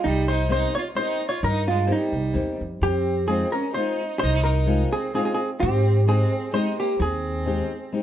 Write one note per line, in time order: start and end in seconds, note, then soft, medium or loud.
0.04 0.65 C2 medium
0.04 0.27 G3 loud
0.04 0.29 D#4 medium
0.28 0.50 D#4 medium
0.28 0.51 C5 medium
0.49 0.74 A#3 medium
0.49 0.74 C4 medium
0.49 0.74 D#4 medium
0.49 0.74 G4 medium
0.49 0.74 C5 medium
0.75 0.88 F4 medium
0.75 0.81 C#5 medium
0.95 1.20 A#3 medium
0.95 1.20 C4 soft
0.95 1.20 D#4 soft
0.95 1.21 G4 medium
0.95 1.28 C5 medium
0.99 1.27 D#4 medium
1.29 1.43 F4 medium
1.29 1.43 C#5 medium
1.43 1.89 G2 loud
1.43 1.67 D#4 medium
1.43 1.66 A#4 medium
1.68 1.90 G#3 medium
1.68 1.90 F4 medium
1.87 2.13 A#3 medium
1.87 2.13 C4 medium
1.87 2.13 D#4 medium
1.87 2.13 G4 medium
1.92 2.58 G3 medium
1.92 2.58 D#4 medium
2.12 2.33 C2 medium
2.33 2.58 D#2 medium
2.33 2.60 A#3 soft
2.33 2.60 C4 soft
2.33 2.60 D#4 soft
2.33 2.60 G4 medium
2.61 2.81 F2 medium
2.81 3.43 F2 medium
2.81 3.27 C4 medium
2.81 3.27 G4 medium
3.27 3.53 G#3 medium
3.27 3.52 C4 medium
3.27 3.54 C4 medium
3.27 3.54 D#4 medium
3.27 3.54 F4 medium
3.27 3.54 G#4 medium
3.52 3.72 C#4 medium
3.52 3.74 A#4 medium
3.73 4.01 G#3 medium
3.73 4.01 C4 soft
3.73 4.18 D#4 medium
3.73 4.01 F4 medium
3.73 4.18 C5 medium
3.77 4.01 D#4 soft
4.19 4.83 C2 loud
4.19 4.44 D#4 loud
4.19 4.43 C5 loud
4.44 4.89 D#4 medium
4.44 4.93 A#4 medium
4.67 4.92 G#3 medium
4.67 4.92 C4 medium
4.67 4.92 D#4 medium
4.67 4.93 F4 medium
4.93 5.13 C4 medium
4.93 5.14 G#4 medium
5.14 5.39 G#3 soft
5.14 5.23 C4 medium
5.14 5.39 C4 medium
5.14 5.39 D#4 soft
5.14 5.39 F4 medium
5.14 5.24 G#4 medium
5.25 5.32 C4 medium
5.25 5.33 G#4 medium
5.33 5.49 C4 medium
5.33 5.50 G#4 medium
5.60 6.22 G#2 loud
5.60 6.04 C4 medium
5.60 6.08 G4 medium
6.07 6.32 G#3 medium
6.07 6.50 C4 medium
6.07 6.32 C4 medium
6.07 6.32 D#4 medium
6.07 6.32 G4 medium
6.07 6.56 G#4 medium
6.53 6.78 G#3 medium
6.53 6.78 C4 medium
6.53 6.78 D#4 soft
6.53 6.76 D#4 medium
6.53 6.78 G4 medium
6.53 6.79 C5 medium
6.79 6.99 A#3 medium
6.79 7.01 G4 medium
7.00 7.61 D#2 loud
7.00 8.03 C4 medium
7.00 8.03 G#4 medium
7.46 7.71 G#3 medium
7.46 7.71 C4 medium
7.46 7.71 D#4 medium
7.46 7.72 G4 medium
7.92 8.03 G#3 medium
7.92 8.03 C4 soft
7.92 8.03 D#4 medium
7.92 8.03 G4 medium